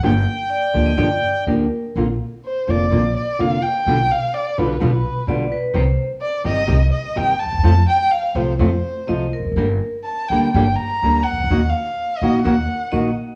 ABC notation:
X:1
M:4/4
L:1/16
Q:1/4=126
K:Gm
V:1 name="Bandoneon"
g12 z4 | [K:Bb] z16 | z16 | z16 |
z16 | z16 | z16 |]
V:2 name="Violin"
z16 | [K:Bb] z4 c2 d4 d2 f2 g2- | g2 f2 d2 =B2 B6 z2 | z4 d2 e4 e2 g2 a2- |
a2 g2 f2 c2 c6 z2 | z4 a2 g2 g2 b4 _g2- | _g2 f4 e2 g6 z2 |]
V:3 name="Vibraphone"
z4 d3 e d4 B4 | [K:Bb] z16 | z12 d2 =B2 | c3 z12 z |
z12 e2 B2 | B3 z12 z | z12 e4 |]
V:4 name="Nylon-string guitar"
[D,F,B,DG]2 z4 [D,F,B,DG]2 [D,F,B,DG]2 z2 [D,F,B,DG]2 z2 | [K:Bb] [D,B,CF]2 z4 [D,B,CF]2 [D,B,CF]2 z2 [D,B,CF]2 z2 | [=B,,D,G,=B,F]2 z4 [B,,D,G,B,F]2 [B,,D,G,B,F]2 z2 [B,,D,G,B,F]2 z2 | [C,E,G,CG]2 z4 [C,E,G,CG]2 [C,E,G,CG]2 z2 [C,E,G,CG]2 z2 |
[C,F,A,CF]2 z4 [C,F,A,CF]2 [C,F,A,CF]2 z2 [C,F,A,CF]2 z2 | [D,G,B,DG]2 z4 [D,G,B,DG]2 [D,G,B,DG]2 z2 [D,G,B,DG]2 z2 | [E,B,E_G]2 z4 [E,B,EG]2 [E,B,EG]2 z2 [E,B,EG]2 z2 |]
V:5 name="Upright bass" clef=bass
G,,,3/2 z4 z/2 D,,3/2 z/2 G,,,3/2 z2 z/2 D,,3/2 z2 z/2 | [K:Bb] B,,,3/2 z4 z/2 F,,,3/2 z/2 B,,,3/2 z2 z/2 F,,,3/2 z2 z/2 | =B,,,3/2 z4 z/2 B,,,3/2 z/2 B,,,3/2 z2 z/2 B,,,3/2 z2 z/2 | C,,3/2 z4 z/2 G,,,3/2 z/2 C,,3/2 z2 z/2 G,,,3/2 z D,,/2 E,,/2 =E,,/2 |
F,,3/2 z4 z/2 C,,3/2 z/2 F,,3/2 z2 z/2 C,,3/2 z =E,,,/2 F,,,/2 _G,,,/2 | G,,,3/2 z4 z/2 D,,3/2 z/2 G,,,3/2 z2 z/2 D,,3/2 z C,,/2 _D,,/2 =D,,/2 | E,,3/2 z4 z/2 B,,,3/2 z/2 E,,3/2 z2 z/2 B,,,3/2 z2 z/2 |]